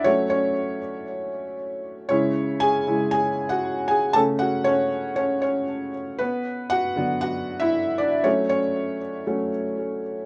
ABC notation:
X:1
M:4/4
L:1/16
Q:1/4=117
K:F#m
V:1 name="Felt piano"
c2 [Cc]4 z8 z2 | [Cc]4 [Gg]4 [Gg]3 [Ff]3 [Gg]2 | [Aa]2 [Ff]2 [Cc]4 [Cc]2 [Cc]4 z2 | [B,B]4 [Ff]4 [Ff]3 [Ee]3 [Dd]2 |
c2 [Cc]4 z8 z2 |]
V:2 name="Felt piano"
[F,A,C]6 z8 z2 | [C,G,E]6 [C,G,E]2 z8 | [C,A,C]6 z8 z2 | z6 [D,F,B,]2 z8 |
[F,A,C]2 z6 [F,A,C]2 z6 |]